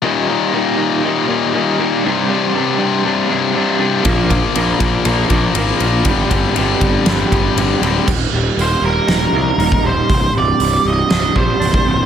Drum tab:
CC |----------------|----------------|----------------|----------------|
RD |----------------|----------------|x-x-x-x-x-x-x-x-|x-x-x-x-x-x-x-x-|
HH |----------------|----------------|----------------|----------------|
SD |----------------|----------------|--------r-------|--------o-------|
BD |----------------|----------------|o-o---o---o-----|o-o---o---o-----|

CC |x---------------|----------------|
RD |----------------|----------------|
HH |----o---o---o---|o---o---o---o---|
SD |--------o-------|--------o-------|
BD |o------------o--|o---------o--o--|